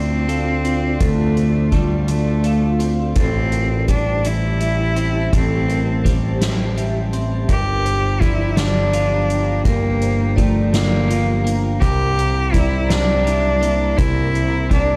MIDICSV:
0, 0, Header, 1, 7, 480
1, 0, Start_track
1, 0, Tempo, 721154
1, 671, Time_signature, 6, 3, 24, 8
1, 9960, End_track
2, 0, Start_track
2, 0, Title_t, "Ambient pad"
2, 0, Program_c, 0, 92
2, 0, Note_on_c, 0, 65, 65
2, 0, Note_on_c, 0, 74, 60
2, 0, Note_on_c, 0, 84, 75
2, 2084, Note_off_c, 0, 84, 0
2, 2085, Note_off_c, 0, 74, 0
2, 2086, Note_off_c, 0, 65, 0
2, 2104, Note_on_c, 0, 81, 74
2, 2106, Note_on_c, 0, 72, 66
2, 2108, Note_on_c, 0, 67, 72
2, 4957, Note_off_c, 0, 72, 0
2, 4957, Note_off_c, 0, 81, 0
2, 4978, Note_on_c, 0, 79, 67
2, 4984, Note_on_c, 0, 82, 75
2, 7836, Note_off_c, 0, 79, 0
2, 7840, Note_off_c, 0, 67, 0
2, 7863, Note_on_c, 0, 64, 70
2, 7869, Note_on_c, 0, 72, 66
2, 9960, Note_off_c, 0, 64, 0
2, 9960, Note_off_c, 0, 72, 0
2, 9960, Note_off_c, 0, 82, 0
2, 9960, End_track
3, 0, Start_track
3, 0, Title_t, "Vibraphone"
3, 0, Program_c, 1, 11
3, 0, Note_on_c, 1, 74, 50
3, 189, Note_off_c, 1, 74, 0
3, 191, Note_on_c, 1, 77, 51
3, 670, Note_off_c, 1, 77, 0
3, 672, Note_on_c, 1, 69, 66
3, 911, Note_off_c, 1, 69, 0
3, 912, Note_on_c, 1, 72, 51
3, 1148, Note_on_c, 1, 74, 51
3, 1150, Note_off_c, 1, 72, 0
3, 1622, Note_on_c, 1, 77, 54
3, 1628, Note_off_c, 1, 74, 0
3, 2104, Note_off_c, 1, 77, 0
3, 2109, Note_on_c, 1, 69, 74
3, 2348, Note_off_c, 1, 69, 0
3, 2348, Note_on_c, 1, 70, 52
3, 2586, Note_on_c, 1, 72, 59
3, 2587, Note_off_c, 1, 70, 0
3, 3066, Note_off_c, 1, 72, 0
3, 3066, Note_on_c, 1, 76, 57
3, 3546, Note_off_c, 1, 76, 0
3, 3546, Note_on_c, 1, 69, 75
3, 3784, Note_on_c, 1, 70, 53
3, 3785, Note_off_c, 1, 69, 0
3, 4025, Note_off_c, 1, 70, 0
3, 4028, Note_on_c, 1, 72, 57
3, 4507, Note_off_c, 1, 72, 0
3, 4507, Note_on_c, 1, 76, 53
3, 4986, Note_off_c, 1, 76, 0
3, 4986, Note_on_c, 1, 70, 69
3, 5221, Note_on_c, 1, 72, 53
3, 5225, Note_off_c, 1, 70, 0
3, 5462, Note_on_c, 1, 74, 58
3, 5463, Note_off_c, 1, 72, 0
3, 5943, Note_on_c, 1, 77, 53
3, 5944, Note_off_c, 1, 74, 0
3, 6424, Note_off_c, 1, 77, 0
3, 6425, Note_on_c, 1, 70, 77
3, 6660, Note_on_c, 1, 72, 52
3, 6665, Note_off_c, 1, 70, 0
3, 6896, Note_on_c, 1, 74, 59
3, 6903, Note_off_c, 1, 72, 0
3, 7381, Note_off_c, 1, 74, 0
3, 7381, Note_on_c, 1, 77, 58
3, 7861, Note_on_c, 1, 70, 75
3, 7864, Note_off_c, 1, 77, 0
3, 8102, Note_on_c, 1, 72, 55
3, 8104, Note_off_c, 1, 70, 0
3, 8344, Note_off_c, 1, 72, 0
3, 8347, Note_on_c, 1, 74, 64
3, 8827, Note_off_c, 1, 74, 0
3, 8830, Note_on_c, 1, 76, 54
3, 9304, Note_on_c, 1, 70, 74
3, 9309, Note_off_c, 1, 76, 0
3, 9546, Note_off_c, 1, 70, 0
3, 9546, Note_on_c, 1, 72, 56
3, 9787, Note_off_c, 1, 72, 0
3, 9787, Note_on_c, 1, 74, 59
3, 9960, Note_off_c, 1, 74, 0
3, 9960, End_track
4, 0, Start_track
4, 0, Title_t, "Cello"
4, 0, Program_c, 2, 42
4, 0, Note_on_c, 2, 60, 71
4, 680, Note_on_c, 2, 57, 71
4, 690, Note_off_c, 2, 60, 0
4, 1162, Note_on_c, 2, 55, 59
4, 1172, Note_off_c, 2, 57, 0
4, 1392, Note_on_c, 2, 57, 73
4, 1402, Note_off_c, 2, 55, 0
4, 1930, Note_off_c, 2, 57, 0
4, 2115, Note_on_c, 2, 60, 73
4, 2564, Note_off_c, 2, 60, 0
4, 2596, Note_on_c, 2, 62, 72
4, 2839, Note_on_c, 2, 64, 71
4, 2849, Note_off_c, 2, 62, 0
4, 3552, Note_off_c, 2, 64, 0
4, 3566, Note_on_c, 2, 60, 66
4, 4069, Note_off_c, 2, 60, 0
4, 4990, Note_on_c, 2, 67, 83
4, 5464, Note_on_c, 2, 64, 70
4, 5474, Note_off_c, 2, 67, 0
4, 5700, Note_on_c, 2, 62, 77
4, 5710, Note_off_c, 2, 64, 0
4, 6423, Note_off_c, 2, 62, 0
4, 6426, Note_on_c, 2, 58, 74
4, 6894, Note_on_c, 2, 57, 65
4, 6904, Note_off_c, 2, 58, 0
4, 7146, Note_on_c, 2, 58, 75
4, 7156, Note_off_c, 2, 57, 0
4, 7686, Note_off_c, 2, 58, 0
4, 7858, Note_on_c, 2, 67, 83
4, 8335, Note_on_c, 2, 64, 75
4, 8345, Note_off_c, 2, 67, 0
4, 8587, Note_on_c, 2, 62, 81
4, 8597, Note_off_c, 2, 64, 0
4, 9301, Note_on_c, 2, 64, 83
4, 9311, Note_off_c, 2, 62, 0
4, 9784, Note_off_c, 2, 64, 0
4, 9797, Note_on_c, 2, 62, 68
4, 9960, Note_off_c, 2, 62, 0
4, 9960, End_track
5, 0, Start_track
5, 0, Title_t, "Clean electric guitar"
5, 0, Program_c, 3, 27
5, 0, Note_on_c, 3, 50, 44
5, 0, Note_on_c, 3, 57, 47
5, 186, Note_off_c, 3, 57, 0
5, 189, Note_on_c, 3, 57, 43
5, 430, Note_on_c, 3, 60, 46
5, 657, Note_off_c, 3, 50, 0
5, 665, Note_on_c, 3, 50, 49
5, 1145, Note_off_c, 3, 57, 0
5, 1147, Note_on_c, 3, 57, 49
5, 1379, Note_off_c, 3, 50, 0
5, 1387, Note_on_c, 3, 50, 49
5, 1623, Note_off_c, 3, 57, 0
5, 1626, Note_on_c, 3, 57, 49
5, 1858, Note_off_c, 3, 60, 0
5, 1861, Note_on_c, 3, 60, 47
5, 2103, Note_on_c, 3, 45, 53
5, 2106, Note_off_c, 3, 50, 0
5, 2584, Note_off_c, 3, 57, 0
5, 2587, Note_on_c, 3, 55, 49
5, 2828, Note_on_c, 3, 52, 49
5, 3061, Note_off_c, 3, 55, 0
5, 3064, Note_on_c, 3, 55, 43
5, 3300, Note_off_c, 3, 60, 0
5, 3303, Note_on_c, 3, 60, 49
5, 3304, Note_off_c, 3, 45, 0
5, 3545, Note_on_c, 3, 45, 52
5, 4022, Note_off_c, 3, 55, 0
5, 4024, Note_on_c, 3, 55, 49
5, 4026, Note_off_c, 3, 52, 0
5, 4265, Note_on_c, 3, 52, 47
5, 4504, Note_off_c, 3, 55, 0
5, 4504, Note_off_c, 3, 60, 0
5, 4507, Note_on_c, 3, 55, 42
5, 4745, Note_off_c, 3, 45, 0
5, 4747, Note_on_c, 3, 60, 46
5, 4982, Note_on_c, 3, 43, 49
5, 4985, Note_off_c, 3, 52, 0
5, 4986, Note_off_c, 3, 60, 0
5, 5461, Note_off_c, 3, 55, 0
5, 5464, Note_on_c, 3, 53, 50
5, 5699, Note_on_c, 3, 50, 50
5, 5937, Note_off_c, 3, 53, 0
5, 5945, Note_on_c, 3, 53, 48
5, 6184, Note_off_c, 3, 43, 0
5, 6423, Note_on_c, 3, 43, 54
5, 6897, Note_off_c, 3, 53, 0
5, 6903, Note_off_c, 3, 50, 0
5, 6905, Note_on_c, 3, 53, 54
5, 7142, Note_on_c, 3, 50, 51
5, 7368, Note_off_c, 3, 53, 0
5, 7376, Note_on_c, 3, 53, 49
5, 7615, Note_on_c, 3, 58, 49
5, 7625, Note_off_c, 3, 43, 0
5, 7860, Note_off_c, 3, 50, 0
5, 7861, Note_off_c, 3, 53, 0
5, 7863, Note_on_c, 3, 48, 57
5, 7883, Note_off_c, 3, 58, 0
5, 8336, Note_on_c, 3, 55, 52
5, 8571, Note_off_c, 3, 48, 0
5, 8579, Note_on_c, 3, 48, 57
5, 8809, Note_off_c, 3, 55, 0
5, 8817, Note_on_c, 3, 55, 53
5, 9060, Note_on_c, 3, 58, 51
5, 9291, Note_off_c, 3, 48, 0
5, 9299, Note_on_c, 3, 48, 58
5, 9773, Note_off_c, 3, 55, 0
5, 9781, Note_on_c, 3, 55, 54
5, 9960, Note_off_c, 3, 48, 0
5, 9960, Note_off_c, 3, 55, 0
5, 9960, Note_off_c, 3, 58, 0
5, 9960, End_track
6, 0, Start_track
6, 0, Title_t, "Picked electric bass"
6, 0, Program_c, 4, 34
6, 0, Note_on_c, 4, 38, 48
6, 644, Note_off_c, 4, 38, 0
6, 673, Note_on_c, 4, 38, 52
6, 2082, Note_off_c, 4, 38, 0
6, 2102, Note_on_c, 4, 33, 56
6, 3516, Note_off_c, 4, 33, 0
6, 3548, Note_on_c, 4, 33, 51
6, 4959, Note_off_c, 4, 33, 0
6, 4984, Note_on_c, 4, 31, 53
6, 6398, Note_off_c, 4, 31, 0
6, 6423, Note_on_c, 4, 31, 56
6, 7838, Note_off_c, 4, 31, 0
6, 7865, Note_on_c, 4, 36, 62
6, 9280, Note_off_c, 4, 36, 0
6, 9307, Note_on_c, 4, 36, 57
6, 9960, Note_off_c, 4, 36, 0
6, 9960, End_track
7, 0, Start_track
7, 0, Title_t, "Drums"
7, 192, Note_on_c, 9, 42, 40
7, 258, Note_off_c, 9, 42, 0
7, 430, Note_on_c, 9, 42, 39
7, 496, Note_off_c, 9, 42, 0
7, 667, Note_on_c, 9, 42, 58
7, 670, Note_on_c, 9, 36, 81
7, 734, Note_off_c, 9, 42, 0
7, 737, Note_off_c, 9, 36, 0
7, 909, Note_on_c, 9, 42, 37
7, 976, Note_off_c, 9, 42, 0
7, 1144, Note_on_c, 9, 42, 38
7, 1147, Note_on_c, 9, 36, 52
7, 1211, Note_off_c, 9, 42, 0
7, 1214, Note_off_c, 9, 36, 0
7, 1384, Note_on_c, 9, 42, 52
7, 1450, Note_off_c, 9, 42, 0
7, 1622, Note_on_c, 9, 42, 44
7, 1689, Note_off_c, 9, 42, 0
7, 1863, Note_on_c, 9, 42, 43
7, 1929, Note_off_c, 9, 42, 0
7, 2099, Note_on_c, 9, 42, 61
7, 2105, Note_on_c, 9, 36, 77
7, 2166, Note_off_c, 9, 42, 0
7, 2172, Note_off_c, 9, 36, 0
7, 2342, Note_on_c, 9, 42, 42
7, 2408, Note_off_c, 9, 42, 0
7, 2583, Note_on_c, 9, 42, 43
7, 2586, Note_on_c, 9, 36, 49
7, 2649, Note_off_c, 9, 42, 0
7, 2652, Note_off_c, 9, 36, 0
7, 2825, Note_on_c, 9, 42, 60
7, 2891, Note_off_c, 9, 42, 0
7, 3064, Note_on_c, 9, 42, 46
7, 3131, Note_off_c, 9, 42, 0
7, 3303, Note_on_c, 9, 42, 46
7, 3370, Note_off_c, 9, 42, 0
7, 3547, Note_on_c, 9, 36, 73
7, 3547, Note_on_c, 9, 42, 62
7, 3613, Note_off_c, 9, 42, 0
7, 3614, Note_off_c, 9, 36, 0
7, 3790, Note_on_c, 9, 42, 42
7, 3856, Note_off_c, 9, 42, 0
7, 4029, Note_on_c, 9, 36, 53
7, 4030, Note_on_c, 9, 42, 45
7, 4096, Note_off_c, 9, 36, 0
7, 4097, Note_off_c, 9, 42, 0
7, 4269, Note_on_c, 9, 38, 75
7, 4269, Note_on_c, 9, 42, 66
7, 4336, Note_off_c, 9, 38, 0
7, 4336, Note_off_c, 9, 42, 0
7, 4509, Note_on_c, 9, 42, 42
7, 4575, Note_off_c, 9, 42, 0
7, 4745, Note_on_c, 9, 42, 43
7, 4812, Note_off_c, 9, 42, 0
7, 4983, Note_on_c, 9, 42, 58
7, 4986, Note_on_c, 9, 36, 75
7, 5050, Note_off_c, 9, 42, 0
7, 5053, Note_off_c, 9, 36, 0
7, 5229, Note_on_c, 9, 42, 44
7, 5296, Note_off_c, 9, 42, 0
7, 5467, Note_on_c, 9, 36, 54
7, 5468, Note_on_c, 9, 42, 42
7, 5533, Note_off_c, 9, 36, 0
7, 5535, Note_off_c, 9, 42, 0
7, 5704, Note_on_c, 9, 38, 87
7, 5704, Note_on_c, 9, 42, 59
7, 5771, Note_off_c, 9, 38, 0
7, 5771, Note_off_c, 9, 42, 0
7, 5945, Note_on_c, 9, 42, 45
7, 6012, Note_off_c, 9, 42, 0
7, 6189, Note_on_c, 9, 42, 42
7, 6256, Note_off_c, 9, 42, 0
7, 6424, Note_on_c, 9, 42, 64
7, 6425, Note_on_c, 9, 36, 77
7, 6490, Note_off_c, 9, 42, 0
7, 6492, Note_off_c, 9, 36, 0
7, 6666, Note_on_c, 9, 42, 45
7, 6732, Note_off_c, 9, 42, 0
7, 6905, Note_on_c, 9, 36, 51
7, 6908, Note_on_c, 9, 42, 44
7, 6972, Note_off_c, 9, 36, 0
7, 6975, Note_off_c, 9, 42, 0
7, 7146, Note_on_c, 9, 38, 83
7, 7146, Note_on_c, 9, 42, 68
7, 7212, Note_off_c, 9, 38, 0
7, 7212, Note_off_c, 9, 42, 0
7, 7391, Note_on_c, 9, 42, 50
7, 7457, Note_off_c, 9, 42, 0
7, 7631, Note_on_c, 9, 42, 49
7, 7698, Note_off_c, 9, 42, 0
7, 7865, Note_on_c, 9, 42, 70
7, 7867, Note_on_c, 9, 36, 85
7, 7932, Note_off_c, 9, 42, 0
7, 7933, Note_off_c, 9, 36, 0
7, 8111, Note_on_c, 9, 42, 49
7, 8177, Note_off_c, 9, 42, 0
7, 8345, Note_on_c, 9, 42, 47
7, 8348, Note_on_c, 9, 36, 53
7, 8412, Note_off_c, 9, 42, 0
7, 8415, Note_off_c, 9, 36, 0
7, 8587, Note_on_c, 9, 38, 89
7, 8587, Note_on_c, 9, 42, 64
7, 8654, Note_off_c, 9, 38, 0
7, 8654, Note_off_c, 9, 42, 0
7, 8831, Note_on_c, 9, 42, 44
7, 8897, Note_off_c, 9, 42, 0
7, 9068, Note_on_c, 9, 42, 43
7, 9134, Note_off_c, 9, 42, 0
7, 9307, Note_on_c, 9, 42, 63
7, 9309, Note_on_c, 9, 36, 90
7, 9374, Note_off_c, 9, 42, 0
7, 9376, Note_off_c, 9, 36, 0
7, 9551, Note_on_c, 9, 42, 44
7, 9618, Note_off_c, 9, 42, 0
7, 9790, Note_on_c, 9, 36, 60
7, 9790, Note_on_c, 9, 42, 40
7, 9856, Note_off_c, 9, 36, 0
7, 9856, Note_off_c, 9, 42, 0
7, 9960, End_track
0, 0, End_of_file